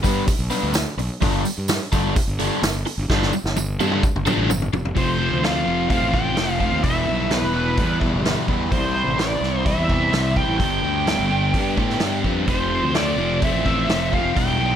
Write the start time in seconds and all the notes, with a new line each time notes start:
0.03 G2 G3 B3 D4 B4, kick, open hi-hat, tambourine
0.26 muted overdriven electric guitar stroke, kick, open hi-hat, tambourine
0.39 B1
0.50 G3 B3 D4 B4, open hi-hat, tambourine
0.63 D2
0.74 muted overdriven electric guitar stroke, snare, open hi-hat, tambourine
0.97 B1, muted overdriven electric guitar stroke, open hi-hat, tambourine
1.21 G1 G3 D4 F4 A4, kick, open hi-hat, tambourine
1.45 muted overdriven electric guitar stroke, open hi-hat, tambourine
1.58 G2
1.68 muted overdriven electric guitar stroke, snare, open hi-hat, tambourine
1.92 G1 G3 D4 F4 A4, kick, open hi-hat, tambourine
2.15 muted overdriven electric guitar stroke, kick, open hi-hat, tambourine
2.28 G1
2.39 G3 D4 F4 A4, open hi-hat
2.62 G1, muted overdriven electric guitar stroke, snare, open hi-hat, tambourine
2.86 muted overdriven electric guitar stroke, open hi-hat, tambourine
2.98 G1
3.10 G1 G3 D4 F4 A4, kick, snare, tambourine
3.22 snare
3.33 muted overdriven electric guitar stroke, tambourine
3.44 G1, snare
3.56 muted overdriven electric guitar stroke, high tom, tambourine
3.79 G2 G3 D4 F4 A4, high tom, tambourine
3.92 mid tom
4.03 muted overdriven electric guitar stroke, kick, tambourine
4.15 G1, mid tom
4.26 G3 D4 F4 A4, mid tom, tambourine
4.38 A1
4.50 G1, muted overdriven electric guitar stroke, mid tom, tambourine
4.62 floor tom
4.73 F1, muted overdriven electric guitar stroke, floor tom, tambourine
4.85 floor tom
4.95 F1 F2 C3 F3 A3 C4 F4 C5, kick, open hi-hat
5.19 F3 A3 C4 F4
5.31 D2
5.42 F2 C3 F3 A3 C4 F4 F5, snare, open hi-hat
5.65 F1 F3 A3 C4 F4
5.88 F3 A3 C4 F4 F5, kick, open hi-hat
6.02 A1
6.12 F2 C3 F3 A3 C4 F4 G5, kick
6.36 F1 F3 A3 C4 F4, snare, open hi-hat
6.60 F3 A3 C4 F4 F5, kick
6.72 D#2
6.83 E1 E2 B2 E3 G3 B3 E4 E5, kick, open hi-hat
7.06 B1 E3 G3 B3 E4
7.29 E2 B2 E3 G3 B3 E4 B4, snare, open hi-hat
7.42 E1
7.53 E3 G3 B3 E4
7.76 E2 E3 G3 B3 E4, kick, open hi-hat
8.00 E2 B2 E3 G3 B3 E4, kick
8.14 G1
8.23 E3 G3 B3 E4, snare, open hi-hat
8.48 E2 E3 G3 B3 E4, kick
8.71 C2 C3 E3 G3 C4 E4 C5, kick, open hi-hat
8.94 G3 C4 E4
9.07 A1
9.16 C3 E3 G3 C4 E4 D5, snare, open hi-hat
9.40 C2 G3 C4 E4, snare
9.64 E3 G3 C4 E4 E5, kick, open hi-hat
9.78 E2
9.89 C3 E3 G3 C4 E4, kick
10.12 C2 E3 G3 C4 E4, snare, open hi-hat
10.36 G3 C4 E4 G5, kick
10.48 A1
10.58 G1 G2 D3 G3 B3 D4 G5, kick, open hi-hat
10.63 G4
10.83 D2 G3 B3 D4 G4
11.06 G2 D3 G3 B3 D4 G4, snare, open hi-hat
11.18 G1
11.29 G3 B3 D4 G4
11.53 G2 G3 B3 D4 G4, kick, open hi-hat
11.76 G2 A2 D3 G3 B3 D4 G4, kick
11.90 snare
12.00 G2 G3 B3 D4 G4, snare, open hi-hat
12.23 F2 G3 B3 D4 G4, kick
12.46 F1 F2 C3 F3 A3 C4 F4 C5, kick, open hi-hat
12.70 F3 A3 C4 F4
12.82 D2
12.94 F2 C3 F3 A3 C4 F4 D5, snare, open hi-hat
13.17 F1 F3 A3 C4 F4
13.40 F3 A3 C4 F4, kick, open hi-hat
13.45 E5
13.54 A1
13.64 F2 C3 F3 A3 C4 F4, kick
13.88 F1 F3 A3 C4 F4, snare, open hi-hat
14.11 F3 A3 C4 F4 F5, kick
14.23 F1
14.35 E1 E2 B2 E3 G3 B3 E4 G5, kick, open hi-hat
14.58 B1 E3 G3 B3 E4